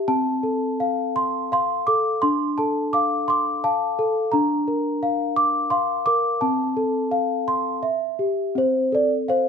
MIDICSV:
0, 0, Header, 1, 2, 480
1, 0, Start_track
1, 0, Key_signature, -1, "major"
1, 0, Tempo, 714286
1, 55, Time_signature, 3, 2, 24, 8
1, 2454, Tempo, 695249
1, 4854, Tempo, 722022
1, 6422, End_track
2, 0, Start_track
2, 0, Title_t, "Celesta"
2, 0, Program_c, 0, 8
2, 52, Note_on_c, 0, 60, 70
2, 53, Note_on_c, 0, 81, 78
2, 290, Note_on_c, 0, 69, 59
2, 539, Note_on_c, 0, 77, 66
2, 779, Note_on_c, 0, 84, 78
2, 995, Note_off_c, 0, 81, 0
2, 1014, Note_off_c, 0, 77, 0
2, 1020, Note_off_c, 0, 84, 0
2, 1022, Note_off_c, 0, 60, 0
2, 1022, Note_on_c, 0, 77, 65
2, 1028, Note_on_c, 0, 84, 83
2, 1249, Note_off_c, 0, 84, 0
2, 1254, Note_off_c, 0, 69, 0
2, 1255, Note_on_c, 0, 86, 82
2, 1262, Note_on_c, 0, 69, 66
2, 1490, Note_on_c, 0, 84, 81
2, 1497, Note_on_c, 0, 62, 75
2, 1500, Note_off_c, 0, 69, 0
2, 1500, Note_off_c, 0, 77, 0
2, 1504, Note_off_c, 0, 86, 0
2, 1731, Note_on_c, 0, 81, 67
2, 1738, Note_on_c, 0, 69, 59
2, 1740, Note_off_c, 0, 84, 0
2, 1969, Note_on_c, 0, 86, 84
2, 1977, Note_on_c, 0, 77, 66
2, 1982, Note_off_c, 0, 81, 0
2, 2204, Note_on_c, 0, 84, 70
2, 2209, Note_off_c, 0, 86, 0
2, 2217, Note_on_c, 0, 86, 79
2, 2313, Note_off_c, 0, 84, 0
2, 2438, Note_off_c, 0, 77, 0
2, 2446, Note_on_c, 0, 77, 72
2, 2446, Note_on_c, 0, 81, 68
2, 2452, Note_off_c, 0, 62, 0
2, 2678, Note_off_c, 0, 69, 0
2, 2686, Note_on_c, 0, 69, 67
2, 2782, Note_off_c, 0, 81, 0
2, 2913, Note_on_c, 0, 82, 69
2, 2925, Note_off_c, 0, 69, 0
2, 2925, Note_off_c, 0, 77, 0
2, 2925, Note_on_c, 0, 62, 80
2, 2929, Note_off_c, 0, 86, 0
2, 3161, Note_on_c, 0, 70, 63
2, 3403, Note_on_c, 0, 77, 71
2, 3604, Note_off_c, 0, 82, 0
2, 3637, Note_on_c, 0, 86, 86
2, 3869, Note_off_c, 0, 77, 0
2, 3871, Note_on_c, 0, 84, 84
2, 3877, Note_on_c, 0, 77, 66
2, 3878, Note_off_c, 0, 62, 0
2, 4107, Note_off_c, 0, 86, 0
2, 4115, Note_on_c, 0, 86, 94
2, 4116, Note_off_c, 0, 70, 0
2, 4124, Note_on_c, 0, 70, 68
2, 4126, Note_off_c, 0, 84, 0
2, 4345, Note_off_c, 0, 86, 0
2, 4358, Note_on_c, 0, 81, 76
2, 4364, Note_on_c, 0, 60, 72
2, 4365, Note_off_c, 0, 77, 0
2, 4367, Note_off_c, 0, 70, 0
2, 4604, Note_on_c, 0, 69, 62
2, 4845, Note_on_c, 0, 77, 67
2, 5086, Note_on_c, 0, 84, 81
2, 5296, Note_off_c, 0, 81, 0
2, 5318, Note_on_c, 0, 76, 66
2, 5323, Note_off_c, 0, 77, 0
2, 5324, Note_off_c, 0, 69, 0
2, 5325, Note_off_c, 0, 60, 0
2, 5326, Note_off_c, 0, 84, 0
2, 5561, Note_on_c, 0, 67, 58
2, 5802, Note_on_c, 0, 60, 65
2, 5804, Note_off_c, 0, 76, 0
2, 5805, Note_off_c, 0, 67, 0
2, 5820, Note_on_c, 0, 72, 81
2, 6039, Note_off_c, 0, 72, 0
2, 6048, Note_on_c, 0, 69, 60
2, 6063, Note_on_c, 0, 74, 78
2, 6169, Note_off_c, 0, 74, 0
2, 6287, Note_on_c, 0, 77, 60
2, 6295, Note_on_c, 0, 72, 82
2, 6422, Note_off_c, 0, 60, 0
2, 6422, Note_off_c, 0, 69, 0
2, 6422, Note_off_c, 0, 72, 0
2, 6422, Note_off_c, 0, 77, 0
2, 6422, End_track
0, 0, End_of_file